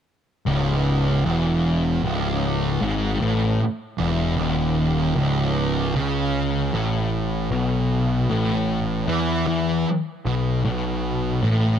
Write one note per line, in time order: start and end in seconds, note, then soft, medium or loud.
0.46 1.22 C#1 medium
0.46 1.24 C#2 medium
1.25 1.99 E1 loud
1.25 2.02 E2 loud
2.03 2.77 C#1 medium
2.03 2.80 C#2 loud
2.81 3.18 G#1 medium
2.81 3.20 G#2 medium
3.21 3.57 A1 medium
3.21 3.59 A2 loud
4.00 4.36 E1 medium
4.00 4.38 E2 loud
4.39 5.13 D#1 medium
4.39 5.16 D#2 loud
5.16 5.91 C#1 medium
5.16 5.94 C#2 loud
5.94 6.69 C#2 medium
5.94 6.72 C#3 loud
6.73 7.47 A1 medium
6.73 7.50 A2 medium
7.51 8.26 B1 loud
7.51 8.28 B2 loud
8.30 9.04 A1 medium
8.30 9.07 A2 loud
9.07 9.44 E2 medium
9.07 9.46 E3 medium
9.46 9.83 E2 medium
9.46 9.85 E3 loud
10.25 10.62 B1 loud
10.25 10.63 B2 loud
10.64 11.39 B1 loud
10.64 11.42 B2 loud
11.43 11.79 A1 medium
11.43 11.79 A2 loud